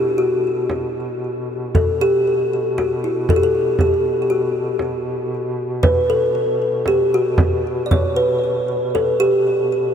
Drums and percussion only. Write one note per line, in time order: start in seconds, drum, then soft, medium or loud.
0.70 frame drum soft
1.75 frame drum medium
2.78 frame drum soft
3.29 frame drum medium
3.79 frame drum soft
4.79 frame drum soft
5.83 frame drum medium
6.86 frame drum soft
7.38 frame drum medium
7.91 frame drum medium
8.95 frame drum soft